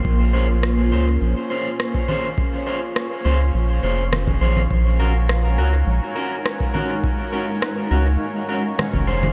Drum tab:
SD |----r-------r---|----r-------r---|----r-------r---|----r-------r---|
CG |--------------O-|------------OO-O|--------------O-|------------OO-O|
BD |o------------o--|o------------o--|o------------o--|o------------o--|